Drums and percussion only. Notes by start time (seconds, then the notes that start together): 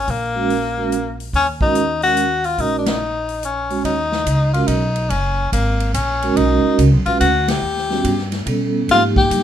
0.08 kick, open hi-hat
0.50 open hi-hat
0.92 closed hi-hat
1.20 open hi-hat
1.33 kick, open hi-hat
1.61 kick
1.75 closed hi-hat
2.02 open hi-hat
2.17 closed hi-hat
2.44 open hi-hat
2.58 kick, open hi-hat
2.86 snare, ride
3.29 open hi-hat
3.43 closed hi-hat
3.70 open hi-hat
3.84 kick, ride
4.12 snare
4.26 kick, hi-hat pedal, ride
4.54 ride
4.68 kick, hi-hat pedal, ride
4.96 ride
5.10 kick, ride
5.52 kick, hi-hat pedal, ride
5.80 ride
5.94 kick, hi-hat pedal, ride
6.22 ride
6.36 kick, ride
6.79 kick, hi-hat pedal, ride
7.06 ride
7.21 kick, hi-hat pedal, ride
7.48 snare, ride
7.77 snare
7.90 snare
8.04 kick, hi-hat pedal, ride
8.18 snare
8.32 snare, ride
8.46 kick, ride
8.89 kick, ride
9.16 kick
9.31 kick, hi-hat pedal, ride